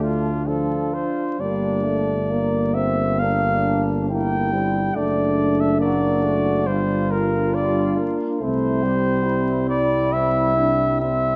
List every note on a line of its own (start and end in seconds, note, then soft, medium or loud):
0.00 1.11 D2 medium
0.00 0.30 A3 medium
0.00 0.46 D4 medium
0.00 1.40 D4 medium
0.00 0.50 F4 medium
0.47 1.09 F3 medium
0.47 1.39 F4 medium
0.47 0.95 A4 medium
0.94 1.41 C5 medium
1.39 4.91 G1 medium
1.39 1.85 G3 medium
1.39 2.13 A#3 medium
1.39 2.28 D4 medium
1.39 2.76 D5 medium
1.84 2.31 A3 medium
2.30 2.76 A#3 medium
2.30 2.74 A#3 medium
2.30 3.18 A#3 medium
2.74 3.22 C4 medium
2.74 3.20 C4 medium
2.74 3.21 E5 medium
3.19 4.09 A#3 medium
3.19 4.09 D4 medium
3.19 3.82 F5 medium
4.09 4.51 A#3 medium
4.09 4.52 A#3 medium
4.09 4.95 E4 medium
4.09 4.97 G5 medium
4.53 4.97 G3 medium
4.53 4.82 C4 medium
4.95 6.69 F#1 medium
4.95 5.82 A3 medium
4.95 5.79 D4 medium
4.95 6.64 D4 medium
4.95 5.62 D5 medium
5.60 5.80 E5 medium
5.80 6.25 A#3 medium
5.80 6.67 F#4 medium
5.80 6.68 D5 medium
6.23 6.68 A3 medium
6.66 8.15 G1 medium
6.66 7.39 G3 medium
6.66 8.38 D4 medium
6.66 8.41 F4 medium
6.66 7.13 C5 medium
7.11 7.56 A#4 medium
7.55 8.00 G3 medium
7.55 7.98 D5 medium
7.98 8.42 A#3 medium
8.40 11.36 C2 medium
8.40 8.85 A3 medium
8.40 9.96 C4 medium
8.40 8.83 E4 medium
8.40 9.64 C5 medium
8.83 11.36 G3 medium
8.83 9.25 G4 medium
9.24 11.00 E4 medium
9.69 10.14 D5 loud
10.13 10.57 C4 medium
10.13 11.00 E5 loud
10.57 11.00 D4 medium
11.00 11.36 C4 medium
11.00 11.36 E5 loud